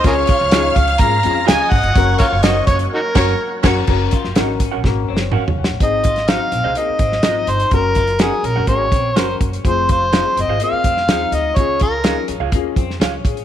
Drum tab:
CC |------------------------------------------------|------------------------------x-----------x-----|x-----------------------------------------------|------------------------------------------------|
HH |x-----x-----x-----x--x--x-----x-----x-----o--x--|x-----x-----x-----x--x--------------------------|------x-----x-----x-----------------------------|x-----x--x--x-----x-----x-----x-----x-----x--x--|
SD |------------o-----------------------o-----------|------------o-----------------o-----------o-----|---------o--o-----------o-------o-----------o---|---------o--o--------------------o--o-----------|
T2 |------------------------------------------------|------------------------------------------------|------------------------------------o-----------|------------------------------------------------|
FT |------------------------------------------------|------------------------------------------------|----------------------------------------o-------|------------------------------------------------|
BD |o-----o-----------o-----o-----------------o-----|o-----o-----------o-----------o-----------o-----|o-----o-----------o-----o-----------------------|o-----o-----------------------o-----------------|

CC |------------------------------------------------|------------------------------------------------|------------------------------------------------|
HH |x-----x--x--x-----x-----x-----x-----x-----x--x--|x-----x-----x-----x-----x-----x-----x-----x-----|x-----x-----x-----x-----x-----x-----x-----x--x--|
SD |------------o-----------------------o-----------|------------o--------------------o--o-----------|------------o--------------------o--o-----------|
T2 |------------------------------------------------|------------------------------------------------|------------------------------------------------|
FT |------------------------------------------------|------------------------------------------------|------------------------------------------------|
BD |o-----o-----------------o-----o-----------o-----|o-----o-----------------------o-----------------|o-----o-----------------o-----o-----------o-----|